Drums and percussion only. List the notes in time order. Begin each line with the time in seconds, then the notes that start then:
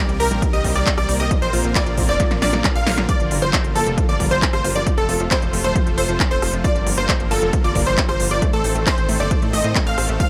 0.09 closed hi-hat
0.20 open hi-hat
0.31 closed hi-hat
0.42 kick, closed hi-hat
0.53 closed hi-hat
0.64 kick, open hi-hat
0.76 closed hi-hat
0.87 kick, clap, closed hi-hat
0.98 cross-stick, closed hi-hat
1.09 open hi-hat
1.20 closed hi-hat
1.31 kick, closed hi-hat
1.42 closed hi-hat
1.53 open hi-hat
1.64 closed hi-hat
1.75 kick, clap, closed hi-hat
1.86 closed hi-hat
1.97 kick, open hi-hat
2.09 closed hi-hat
2.20 kick, snare, closed hi-hat
2.31 snare, closed hi-hat
2.42 snare, open hi-hat
2.53 snare, closed hi-hat
2.64 kick, snare, clap, closed hi-hat
2.76 closed hi-hat
2.87 snare, open hi-hat
2.98 snare, closed hi-hat
3.09 kick, closed hi-hat
3.20 closed hi-hat
3.31 open hi-hat
3.42 closed hi-hat
3.53 kick, clap, closed hi-hat
3.64 closed hi-hat
3.76 open hi-hat
3.87 closed hi-hat
3.98 kick, closed hi-hat
4.09 closed hi-hat
4.20 kick, open hi-hat
4.31 closed hi-hat
4.42 kick, clap, closed hi-hat
4.53 cross-stick, closed hi-hat
4.64 open hi-hat
4.76 closed hi-hat
4.87 kick, closed hi-hat
4.98 closed hi-hat
5.09 open hi-hat
5.20 closed hi-hat
5.31 kick, clap, closed hi-hat
5.42 closed hi-hat
5.53 open hi-hat
5.65 closed hi-hat
5.76 kick, closed hi-hat
5.87 closed hi-hat
5.98 open hi-hat
6.09 closed hi-hat
6.20 kick, clap, closed hi-hat
6.31 closed hi-hat
6.42 cross-stick, open hi-hat
6.53 closed hi-hat
6.64 kick, closed hi-hat
6.76 closed hi-hat
6.87 open hi-hat
6.98 closed hi-hat
7.09 kick, clap, closed hi-hat
7.20 closed hi-hat
7.31 open hi-hat
7.42 closed hi-hat
7.53 kick, closed hi-hat
7.64 closed hi-hat
7.75 kick, open hi-hat
7.86 closed hi-hat
7.98 kick, clap, closed hi-hat
8.09 cross-stick, closed hi-hat
8.20 open hi-hat
8.31 closed hi-hat
8.42 kick, closed hi-hat
8.53 closed hi-hat
8.64 open hi-hat
8.75 closed hi-hat
8.87 kick, clap, closed hi-hat
8.98 closed hi-hat
9.09 open hi-hat
9.20 closed hi-hat
9.31 kick, closed hi-hat
9.42 closed hi-hat
9.53 open hi-hat
9.64 closed hi-hat
9.75 kick, clap, closed hi-hat
9.87 closed hi-hat
9.98 cross-stick, open hi-hat
10.09 closed hi-hat
10.20 kick, closed hi-hat